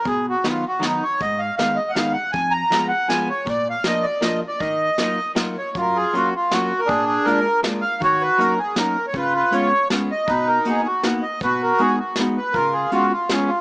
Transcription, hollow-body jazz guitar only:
\new Staff \with { instrumentName = "Hollow-body jazz guitar" } { \time 3/4 \key ees \minor \tempo 4 = 159 b,4 <dis fis b dis'>8 r8 <dis fis b dis'>8 r8 | aes,4 <ees aes ces' ees'>8 r8 <ees aes ces' ees'>8 r8 | f,4 <f aes ces' f'>8 r8 <f aes ces' f'>8 r8 | bes,4 <f bes d' f'>8 r8 <f bes d' f'>8 r8 |
ees4 <ges bes ees' f'>8 r8 <ges bes ees' f'>8 r8 | \key fis \major fis,4 <fis ais cis' eis'>8 r8 <fis ais cis' eis'>8 r8 | ais,4 <gis ais d' eis'>8 r8 <gis ais d' eis'>8 r8 | dis4 <fis ais cis' dis'>8 r8 <fis ais cis' dis'>8 r8 |
cis4 <gis b cis' eis'>8 r8 <gis b cis' eis'>8 r8 | b,4 <ais b dis' fis'>8 r8 <ais b dis' fis'>8 r8 | b,4 <gis b dis' fis'>8 r8 <gis b dis' fis'>8 r8 | cis4 <gis b cis' eis'>8 r8 <gis b cis' eis'>8 r8 | }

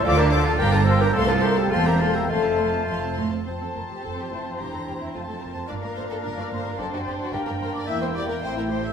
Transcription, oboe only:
\new Staff \with { instrumentName = "Oboe" } { \time 2/4 \key f \major \tempo 4 = 109 a'16 g'16 a'16 f'16 g'16 f'16 a'16 g'16 | a'16 f'16 g'16 e'16 f'16 g'16 f'16 e'16 | f'4. r8 | a''2 |
bes''4 a''4 | bes''2 | a''4 bes''4 | g''2 | }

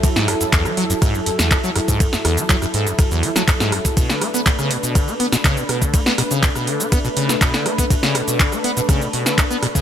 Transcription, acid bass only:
\new Staff \with { instrumentName = "Acid bass" } { \clef bass \time 4/4 \key b \dorian \tempo 4 = 122 fis,16 gis,16 fis,16 fis,16 e,16 fis16 fis16 fis,16 gis,16 fis,16 fis,16 e,16 fis16 fis16 fis,16 gis,16 | fis,16 fis,16 e,16 fis16 fis16 fis,16 gis,16 fis,16 fis,16 e,16 fis16 fis16 fis,16 gis,16 fis,16 fis,16 | b,16 d16 b16 b16 b,16 cis16 b,16 b,16 d16 b16 b16 b,16 cis16 b,16 b,16 d16 | b16 b16 b,16 cis16 b,16 b,16 d16 b16 b16 b,16 cis16 b,16 b,16 d16 b16 b16 |
b,16 cis16 b,16 b,16 d16 b16 b16 b,16 cis16 b,16 b,16 d16 b16 b16 b,16 cis16 | }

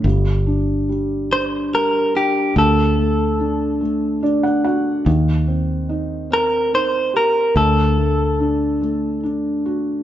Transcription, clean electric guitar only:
\new Staff \with { instrumentName = "Clean electric guitar" } { \time 6/8 \key g \minor \tempo 4. = 48 r4. c''8 bes'8 g'8 | a'2 r4 | r4. bes'8 c''8 bes'8 | a'2 r4 | }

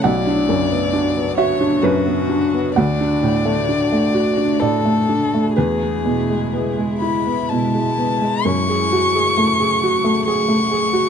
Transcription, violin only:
\new Staff \with { instrumentName = "Violin" } { \time 3/4 \key fis \minor \tempo 4 = 65 d''4. cis''8 fis'4 | d''2 a'4 | gis'4. b''8 a''4 | cis'''2 cis'''4 | }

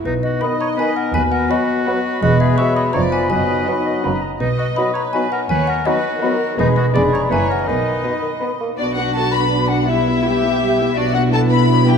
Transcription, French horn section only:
\new Staff \with { instrumentName = "French horn section" } { \time 3/4 \key b \major \tempo 4 = 165 << { dis'2. | fis'2. | gis'4 fis'4 f'4 | dis'4 dis'4 cis'8 r8 |
r4 dis'4 dis'4 | r4 dis'4 dis'4 | dis'4 d'4 e'4 | r4 dis'4 dis'4 |
\key b \minor d'2. | g'2. | d'2. | } \\ { b2.~ | b2. | b2 ces'4 | b4 b4 ais8 r8 |
r4 b4 b4 | r4 b4 b4 | gis4 aes4 ais4 | r4 b4 b4 |
b2.~ | b2. | b2. | } >> }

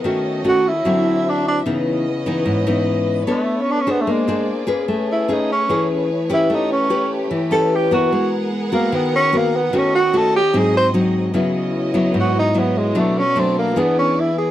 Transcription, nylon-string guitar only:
\new Staff \with { instrumentName = "Nylon-string guitar" } { \time 4/4 \key gis \minor \tempo 4 = 149 << { <a cis' fis'>4 <a cis' fis'>8 r8 <fis c' e'>2 | <e b dis'>4 r8 <e b dis'>4 <e b dis'>4. | <d' a' cis''>4 r8 <d' gis' bis'>4 <d' gis' bis'>4 <cis' gis' b'>8~ | <cis' gis' b'>4 <cis' gis' b'>4 <cis' gis' b'>4 r8 <cis' g' b'>8~ |
<cis' g' b'>4 <cis' g' b'>4 r8 <cis' g' b'>4 <b fis' ais'>8~ | <b fis' ais'>4 r8 <b fis' ais'>4. <b fis' ais'>8 r8 | <a cis' fis'>8 r8 <a cis' fis'>8 r8 <fis bis dis'>4 <fis bis dis'>4 | \key cis \minor <fis b e'>4. <fis b e'>4. <fis b e'>4 |
<fis a d'>8 r8 <fis a d'>4 <b d' gis'>4. r8 | } \\ { dis2 d2 | cis2 gis,2 | b2 ais2 | a2 e2 |
a2 e2 | gis2 dis2 | dis2 gis,2 | cis2 gis,2 |
b,2 e2 | } >> }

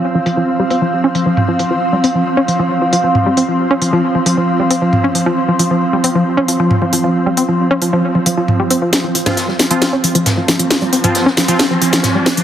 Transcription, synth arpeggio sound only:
\new Staff \with { instrumentName = "Synth arpeggio sound" } { \clef bass \time 4/4 \key c \phrygian \tempo 4 = 135 r16 f16 f16 f16 r16 g16 c'16 f16 r16 des'16 f16 f16 r16 f16 f16 f16 | r16 g16 c'16 f16 r16 des'16 f16 f16 r16 f16 f16 f16 r16 g16 c'16 f16 | r16 des'16 f16 f16 r16 f16 f16 f16 r16 g16 c'16 f16 r16 des'16 f16 f16 | r16 f16 f16 f16 r16 g16 c'16 f16 r16 des'16 f16 f16 r16 f16 f16 f16 |
r16 g16 c'16 f16 r16 des'16 f16 f16 r16 f16 f16 f16 r16 g16 c'16 f16 | r16 f16 f16 f16 r16 g16 c'16 f16 r16 des'16 f16 f16 r16 f16 f16 f16 | r16 g16 c'16 f16 r16 des'16 f16 f16 r16 f16 f16 f16 r16 g16 c'16 f16 | }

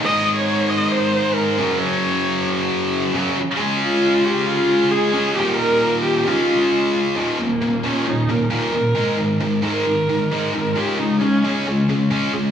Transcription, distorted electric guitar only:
\new Staff \with { instrumentName = "Distorted electric guitar" } { \clef bass \time 4/4 \key des \lydian \tempo 4 = 134 <aes, ees aes>2.~ <aes, ees aes>8 <ges, des ges>8~ | <ges, des ges>2. <ges, des ges>8 r8 | <des aes des'>2.~ <des aes des'>8 <des aes des'>8 | <ees, bes, ees>2 <des aes des'>2 |
<ees, bes, ees>8 <ees, bes,>8 <ees, bes,>8 <ees, bes, ees>8 <ees, bes,>8 <ees, bes,>8 <ees, bes, ees>8 <ees, bes,>8 | <aes, ees aes>8 <aes, ees>8 <aes, ees>8 <aes, ees aes>8 <aes, ees>8 <aes, ees>8 <aes, ees aes>8 <aes, ees>8 | <des aes des'>8 <des aes>8 <des aes>8 <des aes des'>8 <des aes>8 <des aes>8 <des aes des'>8 <des aes>8 | }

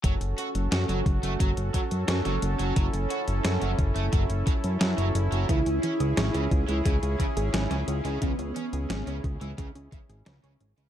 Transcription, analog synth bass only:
\new Staff \with { instrumentName = "Analog synth bass" } { \clef bass \time 4/4 \key fis \minor \tempo 4 = 88 fis,,16 fis,,16 r16 fis,,16 fis,16 fis,,16 fis,,16 fis,,16 fis,,16 fis,,16 r16 fis,16 fis,16 fis,,16 fis,,16 fis,,16 | fis,,16 fis,,16 r16 fis,,16 fis,16 fis,,16 fis,,16 fis,,16 fis,,16 fis,,16 r16 fis,16 fis,16 fis,,16 fis,,16 fis,,16 | cis,16 cis,16 r16 cis,16 gis,,16 cis,16 cis,16 cis,16 cis,16 cis,16 r16 gis,,16 gis,,16 cis,16 cis,16 cis,16 | cis,16 cis,16 r16 cis,16 gis,,16 cis,16 cis,16 cis,16 cis,16 cis,16 r16 gis,,16 cis,16 cis,16 gis,,16 cis,16 | }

